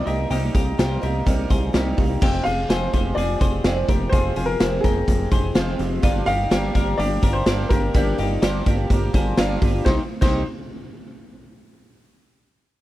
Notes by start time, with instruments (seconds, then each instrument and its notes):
0.06 analog synth bass C2, twelve-string acoustic guitar A#3 D#4, clean electric guitar G4 A#4, upright piano D#5, closed hi-hat
0.10 twelve-string acoustic guitar G3
0.30 analog synth bass C2, twelve-string acoustic guitar C3 G3 A#3 D#4, clean electric guitar D#4 G4, closed hi-hat
0.54 analog synth bass C2, twelve-string acoustic guitar G3 A#3 D#4, clean electric guitar D#4 G4, kick, closed hi-hat
0.78 analog synth bass C2, twelve-string acoustic guitar C3 G3 A#3 D#4, clean electric guitar G4 C5, snare, closed hi-hat
1.02 analog synth bass C2, twelve-string acoustic guitar G3 A#3 D#4, clean electric guitar G4 A#4, closed hi-hat
1.26 analog synth bass C2, twelve-string acoustic guitar C3 G3 A#3 D#4, kick, closed hi-hat
1.49 analog synth bass C2, twelve-string acoustic guitar G3 A#3 D#4, clean electric guitar G#4 C5, kick, closed hi-hat
1.73 analog synth bass C2, twelve-string acoustic guitar C3 G3 A#3 D#4, clean electric guitar D#4 G4, snare, closed hi-hat
1.97 analog synth bass C2, twelve-string acoustic guitar G3 A#3 D#4, kick, open hi-hat
2.21 analog synth bass F1, twelve-string acoustic guitar F2 C3 F3 G#3 C4 G4, clean electric guitar C4 G4, kick, crash
2.44 analog synth bass F1, twelve-string acoustic guitar G#3 C4 G4, clean electric guitar F4 G#4, upright piano F5, closed hi-hat
2.48 twelve-string acoustic guitar F3
2.69 analog synth bass F1, twelve-string acoustic guitar F2 C3 F3 G#3 C4 G4, clean electric guitar G#4 C5, snare, closed hi-hat
2.93 analog synth bass F1, twelve-string acoustic guitar F3 G#3 C4 G4, clean electric guitar G#4 C5, kick, closed hi-hat
3.15 analog synth bass F1, twelve-string acoustic guitar F3 G#3, clean electric guitar F4 G#4, upright piano D5, closed hi-hat
3.19 twelve-string acoustic guitar C4 G4
3.40 analog synth bass F1, twelve-string acoustic guitar F3 G#3 C4 G4, clean electric guitar G#4 C5, kick, closed hi-hat
3.64 analog synth bass F1, twelve-string acoustic guitar F2 C3 F3 G#3 C4 G4, clean electric guitar G#4 D5, snare, closed hi-hat
3.88 analog synth bass F1, twelve-string acoustic guitar F3 G#3 C4 G4, clean electric guitar G4 A#4, kick, closed hi-hat
4.09 analog synth bass F1, twelve-string acoustic guitar F2 C3 F3, clean electric guitar G#4, upright piano C5, kick, closed hi-hat
4.14 twelve-string acoustic guitar G#3 C4 G4, clean electric guitar F4
4.36 analog synth bass F1, twelve-string acoustic guitar F3 G#3 C4 G4, clean electric guitar F4 G#4, closed hi-hat
4.46 upright piano A#4
4.60 analog synth bass F1, twelve-string acoustic guitar F2 C3 F3 G#3 C4 G4, clean electric guitar G#4 C5, snare, closed hi-hat
4.81 analog synth bass F1, twelve-string acoustic guitar G4, upright piano G#4, clean electric guitar A#4, kick, closed hi-hat
4.85 twelve-string acoustic guitar F3 G#3 C4, clean electric guitar G5
5.07 analog synth bass F1, twelve-string acoustic guitar F3 G#3 C4 G4, kick, closed hi-hat
5.31 analog synth bass F1, twelve-string acoustic guitar F3 G#3 C4 G4, clean electric guitar G#4 C5, kick, closed hi-hat
5.55 analog synth bass F1, twelve-string acoustic guitar F2 C3 F3 G#3 C4 G4, clean electric guitar C4 F4, snare, closed hi-hat
5.79 analog synth bass F1, twelve-string acoustic guitar F3 G#3 C4 G4, closed hi-hat
6.02 analog synth bass G1, twelve-string acoustic guitar G2 D3 F3 A#3 D4 G4, clean electric guitar D4 F4, kick, closed hi-hat
6.26 analog synth bass G1, twelve-string acoustic guitar A#3 D4 G4, clean electric guitar D#4 G4, upright piano F5, closed hi-hat
6.30 twelve-string acoustic guitar F3
6.50 analog synth bass G1, twelve-string acoustic guitar G2 D3 F3 A#3 D4 G4, clean electric guitar G4 A#4, snare, closed hi-hat
6.74 analog synth bass G1, twelve-string acoustic guitar F3 A#3 D4 G4, clean electric guitar G4 A#4, kick, closed hi-hat
6.98 analog synth bass G1, twelve-string acoustic guitar F3 A#3 D4, clean electric guitar D4 G4, upright piano D5, closed hi-hat
7.02 twelve-string acoustic guitar G4
7.22 analog synth bass G1, twelve-string acoustic guitar F3 A#3 D4 G4, clean electric guitar G4 A#4, kick, closed hi-hat
7.33 upright piano C5
7.46 analog synth bass G1, twelve-string acoustic guitar G2 D3 F3 A#3 D4 G4, clean electric guitar A#4 D5, snare, closed hi-hat
7.69 analog synth bass G1, twelve-string acoustic guitar A#3 D4 G4, clean electric guitar G4 A#4, upright piano A#4, kick, closed hi-hat
7.73 twelve-string acoustic guitar F3
7.94 analog synth bass G1, twelve-string acoustic guitar G2 D3 F3 A#3 D4 G4, clean electric guitar D4 G4, kick, closed hi-hat
8.18 analog synth bass G1, twelve-string acoustic guitar F3 A#3 D4 G4, clean electric guitar D#4 G4, closed hi-hat
8.42 analog synth bass G1, twelve-string acoustic guitar G2 D3 F3 A#3 D4 G4, clean electric guitar G4 C5, snare, closed hi-hat
8.66 analog synth bass G1, twelve-string acoustic guitar F3 A#3 D4 G4, clean electric guitar G4 A#4, kick, closed hi-hat
8.90 analog synth bass G1, twelve-string acoustic guitar F3 A#3 D4 G4, kick, closed hi-hat
9.14 analog synth bass G1, twelve-string acoustic guitar F3 A#3 D4 G4, clean electric guitar G#4 C5, kick, closed hi-hat
9.37 analog synth bass G1, twelve-string acoustic guitar G2 D3 F3 A#3 D4 G4, clean electric guitar D4 F4, snare, closed hi-hat
9.61 analog synth bass G1, twelve-string acoustic guitar F3 A#3 D4 G4, kick, open hi-hat
9.85 analog synth bass C2, twelve-string acoustic guitar C3 D#3 A#3 C4 G4, clean electric guitar D#4, upright piano C5, kick, snare
10.21 analog synth bass C2, twelve-string acoustic guitar C3 D#3 A#3 C4 G4, clean electric guitar D#4, upright piano C5, kick, crash